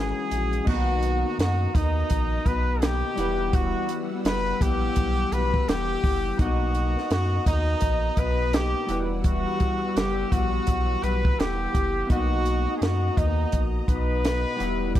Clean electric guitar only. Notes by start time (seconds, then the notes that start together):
Already playing: E3 G#3 C#4 F#4
0.31 E3 G#3 C#4 F#4
0.68 B2 A#3 D#4 F#4
1.24 A#3 D#4 F#4
1.75 A#3 D#4 F#4
2.46 B2 D#4 F#4
2.81 B2 A#3 D#4
3.17 E3 G3 B3
4.09 G3 B3 F#4
4.60 E3 G3 B3
5.31 E3 G3 B3 F#4
5.68 E3 G3 B3
6.39 B2 A#3 D#4 F#4
6.97 A#3 D#4 F#4
7.48 A#3 D#4 F#4
8.17 B2 D#4 F#4
8.53 B2 A#3 D#4
8.89 E3 G3 B3 F#4
9.83 G3 B3
10.32 E3 G3 B3 F#4
11.02 E3 G3 B3 F#4
11.38 E3 G3 B3
12.09 B2 A#3 D#4 F#4
12.66 A#3 D#4 F#4
13.19 A#3 D#4 F#4
13.88 B2 D#4 F#4
14.24 B2 D#4 F#4
14.59 E3 G3 B3